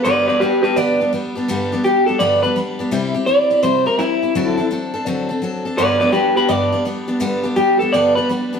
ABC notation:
X:1
M:4/4
L:1/8
Q:"Swing" 1/4=167
K:G
V:1 name="Clean electric guitar"
[Bd] [Bd] [GB] [GB] d2 z2 | z2 G A d B z2 | z2 d2 c _B E2- | E2 z6 |
[Bd] [Bd] [GB] [GB] d2 z2 | z2 G A d B z2 |]
V:2 name="Steel-string acoustic guitar"
[G,,D,G,B,DG] [G,B,DG] [G,B,DG] [G,B,DG] [G,,D,G,B,DG] [G,B,DG] [G,B,DG] [G,B,DG] | [G,,D,G,B,DG] [G,B,DG] [G,B,G] [G,B,DG] [G,,D,G,B,DG] [G,B,DG] [G,B,DG] [G,B,DG] | [C,G,CEG] [CEG] [G,CEG] [CEG] [C,G,CEG] [CEG] [G,CEG] [CEG] | [D,F,CDA] [CDA] [F,CDA] [CDA] [D,F,CDA] [CDA] [F,CDA] [CDA] |
[G,,D,G,B,DG] [G,B,DG] [G,B,DG] [G,B,DG] [G,,D,G,B,DG] [G,B,DG] [G,B,DG] [G,B,DG] | [G,,D,G,B,DG] [G,B,DG] [G,B,DG] [G,B,DG] [G,,D,G,B,DG] [G,B,DG] [G,B,DG] [G,B,DG] |]